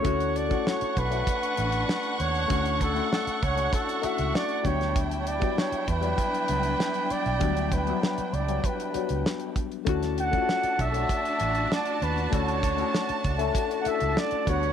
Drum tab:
HH |xxxx-xxxxxxx-xxx|xxxx-xxxxxxx-xxx|xxxx-xxxxxxx-xxx|xxxx-xxxxxxx-xxx|
SD |----o-------o---|----o-------o--o|----o-------o---|----o-------o---|
BD |o--o--o-o-------|o-o---o-o-----o-|o--o--o-o-------|o-o-----o-----o-|

HH |xxxx-xxxxxxx-xxx|xxxx-xxxxxxx-xxx|
SD |-o--o-------o---|----o-------o---|
BD |o--o--o-o-------|o-o---o-o-----o-|